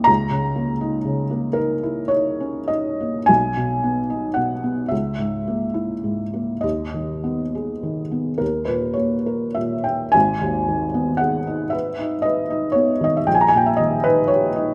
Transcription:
Already playing: A#2 A#3 C#4 D#4 E4 G5
0.04 C#2 A#5
0.31 C#3
0.55 A#3
0.81 D#4
1.05 C#3
1.30 A#3
1.53 D#4 A#4
1.83 E4
2.08 D#4 C#5
2.40 C#4
2.68 D#4 D#5
3.00 A#3
3.26 B1 G#5
3.57 B2
3.83 B3
4.10 D#4
4.34 B2 F#5
4.63 B3
4.88 C#2 E5
5.19 G#2
5.47 A#3
5.74 E4
6.04 G#2
6.34 A#3
6.61 D#2 D#5
6.94 D#3
7.24 B3
7.55 G#4
7.83 D#3
8.12 B3
8.38 D#2 A#4
8.65 A#2 B4
8.94 A#3 C#5
9.26 A#4
9.55 A#2 E5
9.84 A#3 G5
10.12 G#1 G#5
10.41 D#2
10.68 D#3
10.94 B3
11.17 G#4 F#5
11.47 D#4
11.70 B4 E5
11.99 D#4
12.22 B4 D#5
12.50 D#4
12.72 B3 C#5
13.01 D#3 D#5
13.17 E5
13.27 A#1 G5
13.35 G#5
13.41 A#5
13.48 G#5
13.54 A#2 G5
13.66 E5
13.77 D#3 D#5
14.04 D#4 B4
14.28 G4 C#5
14.56 D#4

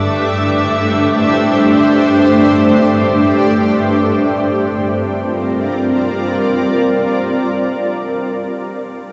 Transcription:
Already playing: G2 A3 D4 G4 C5 E5 D6
4.19 G3
4.29 C4
4.44 F4
4.56 A#4
4.69 D5

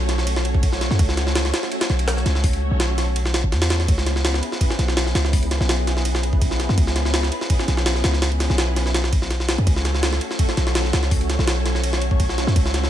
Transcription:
Already playing: B1 A3 C#4 F#4 A4 C#5
0.09 snare, ride
0.18 snare
0.27 ride
0.36 snare
0.45 ride
0.54 kick
0.63 A3 C#4 F#4 A4 C#5, kick, ride
0.72 snare
0.81 snare, ride
0.91 F#2, snare
0.99 C#2 A3 C#4 F#4 A4 C#5, kick, ride
1.09 snare
1.17 snare, ride
1.27 snare
1.35 snare, ride
1.45 snare
1.54 snare, ride
1.63 snare
1.71 A3 C#4 F#4 A4 C#5, ride
1.81 snare, ride
1.90 B1 A3 C#4 F#4 A4 C#5, snare
1.99 ride
2.08 snare, ride
2.17 snare
2.26 C#2, snare, ride
2.35 snare
2.44 A3 C#4 F#4 A4 C#5, kick, open hi-hat
2.53 ride
2.71 B1
2.80 snare, ride
2.98 snare, ride
3.16 ride
3.26 snare
3.34 snare, ride
3.44 G#1
3.52 E2, snare, ride
3.62 snare, ride
3.70 A3 C#4 F#4 A4 C#5, snare, ride
3.80 snare
3.88 C#2 B3 C#4 E4 G#4 B4, kick, ride
3.98 snare
4.06 snare, ride
4.16 snare
4.25 snare, ride
4.34 snare
4.43 ride
4.52 snare
4.61 B3 C#4 E4 G#4 B4, kick, ride
4.70 snare
4.79 B1 B3 C#4 E4 G#4 B4, snare, ride
4.88 snare
4.97 snare, ride
5.07 snare
5.15 C#2, snare, ride
5.25 snare
5.33 B3 C#4 E4 G#4 B4, kick, open hi-hat
5.43 ride
5.51 snare, ride
5.60 B1, snare
5.69 snare, ride
5.87 snare, ride
5.97 snare
6.05 ride
6.15 snare
6.23 ride
6.33 kick
6.41 B3 C#4 E4 G#4 B4, kick, ride
6.51 snare
6.60 snare, ride
6.69 F#2, snare
6.78 C#2 B3 C#4 E4 G#4 B4, kick, ride
6.87 snare
6.96 snare, ride
7.05 snare
7.14 snare, ride
7.23 snare
7.32 ride
7.41 snare
7.50 B3 C#4 E4 G#4 B4, kick, ride
7.59 snare
7.68 B1 B3 C#4 E4 G#4 B4, snare, ride
7.77 snare
7.86 snare, ride
7.95 snare
8.04 C#2, snare, ride
8.13 snare
8.22 B3 C#4 E4 G#4 B4, snare, ride
8.32 ride
8.40 snare, ride
8.50 B1, snare
8.58 snare, ride
8.76 snare, ride
8.86 snare
8.94 snare, ride
9.04 snare
9.13 kick, ride
9.22 snare
9.31 snare, ride
9.40 snare
9.49 B3 C#4 E4 G#4 B4, snare, ride
9.58 F#2, ride
9.67 C#2 A3 C#4 F#4 A4 C#5, kick, ride
9.76 snare
9.85 snare, ride
9.95 snare
10.03 snare, ride
10.13 snare
10.21 ride
10.31 snare
10.39 A3 C#4 F#4 A4 C#5, kick, ride
10.49 snare
10.56 B1 A3 C#4 F#4 A4 C#5, snare, ride
10.67 snare
10.75 snare, ride
10.85 snare
10.93 C#2, snare, ride
11.03 snare
11.11 A3 C#4 F#4 A4 C#5, kick, open hi-hat
11.21 ride
11.30 snare, ride
11.39 B1, snare
11.48 snare, ride
11.66 snare, ride
11.75 snare
11.84 ride
11.93 snare
12.02 ride
12.11 kick
12.19 A3 C#4 F#4 A4 C#5, kick, ride
12.29 snare
12.38 snare, ride
12.47 F#2, snare
12.56 C#2 A3 C#4 F#4 A4 C#5, kick, ride
12.66 snare
12.74 snare, ride
12.84 snare

